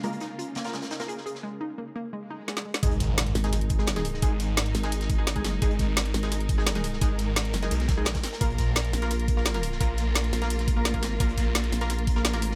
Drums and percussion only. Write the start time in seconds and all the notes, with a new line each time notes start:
0.03 closed hi-hat
0.13 closed hi-hat
0.20 snare, closed hi-hat
0.39 closed hi-hat
0.55 snare, closed hi-hat
0.64 snare, closed hi-hat
0.73 snare, closed hi-hat
0.82 snare, closed hi-hat
0.91 snare, closed hi-hat
1.00 snare, closed hi-hat
1.09 closed hi-hat
1.17 snare
1.27 closed hi-hat
1.35 snare
2.48 snare
2.57 snare
2.74 snare
2.83 kick, closed hi-hat
2.91 closed hi-hat
3.00 kick, snare, closed hi-hat
3.18 snare, closed hi-hat
3.27 closed hi-hat
3.35 snare, closed hi-hat, open hi-hat
3.43 snare, closed hi-hat
3.53 snare, closed hi-hat
3.61 closed hi-hat
3.70 kick, closed hi-hat
3.78 snare
3.87 snare, closed hi-hat
3.96 snare, closed hi-hat
4.05 closed hi-hat, open hi-hat
4.14 snare
4.22 kick, closed hi-hat
4.40 snare, closed hi-hat
4.57 snare, closed hi-hat
4.66 closed hi-hat
4.75 snare, closed hi-hat, open hi-hat
4.83 snare, closed hi-hat
4.92 closed hi-hat
5.01 snare, closed hi-hat
5.10 kick, closed hi-hat
5.27 snare, closed hi-hat
5.36 kick, closed hi-hat
5.44 snare, closed hi-hat, open hi-hat
5.62 kick, closed hi-hat
5.71 closed hi-hat
5.79 kick, snare, closed hi-hat
5.97 snare, closed hi-hat
6.06 closed hi-hat
6.14 snare, closed hi-hat, open hi-hat
6.23 snare, closed hi-hat
6.32 snare, closed hi-hat
6.40 closed hi-hat
6.49 kick, closed hi-hat
6.58 snare
6.66 snare, closed hi-hat
6.75 snare, closed hi-hat
6.84 closed hi-hat, open hi-hat
6.93 snare
7.01 kick, closed hi-hat
7.18 snare, closed hi-hat
7.36 snare, closed hi-hat
7.45 closed hi-hat
7.53 snare, closed hi-hat, open hi-hat
7.62 snare, closed hi-hat
7.71 closed hi-hat
7.80 snare, closed hi-hat
7.88 kick, snare, closed hi-hat
8.05 snare, closed hi-hat
8.14 kick, snare, closed hi-hat
8.24 snare, closed hi-hat, open hi-hat
8.33 snare, closed hi-hat
8.41 kick, closed hi-hat
8.50 closed hi-hat
8.58 kick, snare, closed hi-hat
8.76 snare, closed hi-hat
8.85 closed hi-hat
8.93 snare, closed hi-hat, open hi-hat
9.02 snare, closed hi-hat
9.11 snare, closed hi-hat
9.20 closed hi-hat
9.28 kick, closed hi-hat
9.37 snare
9.45 snare, closed hi-hat
9.54 snare, closed hi-hat
9.63 closed hi-hat, open hi-hat
9.72 snare
9.81 kick, closed hi-hat
9.98 snare, closed hi-hat
10.15 snare, closed hi-hat
10.24 closed hi-hat
10.33 snare, closed hi-hat, open hi-hat
10.42 snare, closed hi-hat
10.50 closed hi-hat
10.59 snare, closed hi-hat
10.68 kick, closed hi-hat
10.85 snare, closed hi-hat
10.94 kick, closed hi-hat
11.02 snare, closed hi-hat, open hi-hat
11.20 kick, closed hi-hat
11.29 closed hi-hat
11.38 kick, snare, closed hi-hat
11.55 snare, closed hi-hat
11.64 closed hi-hat
11.72 snare, closed hi-hat, open hi-hat
11.81 snare, closed hi-hat
11.90 snare, closed hi-hat
11.99 closed hi-hat
12.07 kick, closed hi-hat
12.16 snare
12.25 snare, closed hi-hat
12.33 snare, closed hi-hat
12.42 closed hi-hat, open hi-hat
12.51 snare